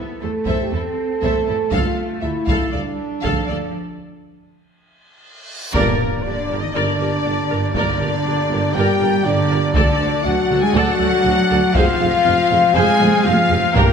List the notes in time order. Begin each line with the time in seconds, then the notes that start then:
Already playing: B3 E4
0.21 E2 A3 A4 C5
0.45 E2 A4 C5 E5, taiko
0.61 G4
0.72 E2 C4 E4 A4
1.22 E2 A3 A4 C5 E5, taiko
1.46 E2 E4 A4
1.71 D2 F4 A4 F5, taiko
2.21 D2 E4 A4 E5
2.46 D2 A4 F5, taiko
2.71 D2 G3 D4 A4 D5
3.21 D2 F3 A4 F5, taiko
3.47 D2 A4 D5
3.74 reverse cymbal
5.73 G1 G2 A#2 A#3 D4 G4 A#4 D5, taiko, impact
5.99 G1 G2 G4 A#4
6.23 G1 G2 D3 D4 G4 D5
6.49 G1 G2 G4 A#4
6.61 D#3 D#4 D#5
6.72 G1 G2 D3 D4 A#4 D5
6.99 G1 G2 G4 A#4
7.24 G1 G2 D4 G4
7.49 G1 G2 G4 A#4
7.73 G1 G2 D3 D4 A#4 D5, taiko
7.99 G1 G2 G4 A#4
8.24 G1 G2 D4 G4
8.49 G1 G2 G4 A#4
8.73 G1 G2 G3 G4 A#4 D5 G5
8.99 G1 G2 G4 A#4
9.24 G1 G2 D3 D4 G4 D5
9.49 G1 G2 G4 A#4
9.74 D2 D3 A3 D4 A4 D5, taiko
9.98 D2 F#4 A4
10.23 D2 F#3 D4 F#4 F#5
10.49 D2 F#4 A4
10.62 G#3 G#4 G#5
10.74 D2 F#3 F#4 A4 D5 F#5
10.99 D2 F#4 A4
11.23 D2 D4 F#4
11.50 D2 F#4 A4
11.74 F1 F2 F3 G#3 C4 F4 G#4 C5 F5, taiko
12.00 F1 F2 F4 G#4
12.24 F1 F2 C4 F4
12.50 F1 F2 F4 G#4
12.74 F1 F2 G#3 G#4 C5 G#5
13.00 F1 F2 F4 G#4, taiko high
13.24 F1 F2 F3 C4 F4 F5, taiko high
13.49 F1 F2 F4 G#4, taiko low
13.73 G1 G2 A#2 A#3 D4 G4 A#4 G5, taiko